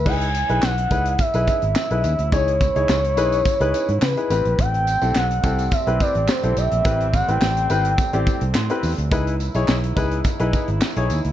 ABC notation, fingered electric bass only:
X:1
M:4/4
L:1/16
Q:1/4=106
K:C#m
V:1 name="Fingered electric bass" clef=bass
C,,3 B,,, B,,,2 C,,2 z B,,, z G,,, z B,,, D,, =D,, | C,,3 C,, C,,2 B,,,2 z C,, z G,, C, z A,,, ^A,,, | A,,,3 B,,, B,,,2 =C,,2 z B,,, z A,,, z B,,, B,,, ^A,,, | A,,,3 A,,, A,,,2 G,,,2 z A,,, z =C,, A,, z E,, =D,, |
C,,3 B,,, B,,,2 C,,2 z B,,, z G,,, z B,,, D,, =D,, |]